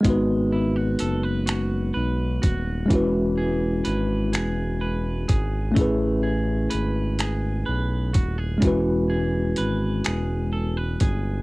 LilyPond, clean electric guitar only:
\new Staff \with { instrumentName = "Clean electric guitar" } { \time 6/8 \key e \major \tempo 4. = 42 gis8 e'16 fis'16 a'16 b'16 fis'8 b'8 fis'8 | e8 gis'8 b'8 gis'8 b'8 gis'8 | a8 gis'8 b'8 gis'8 b'8 fis'16 gis'16 | e8 gis'8 b'8 gis'8 a'16 b'16 gis'8 | }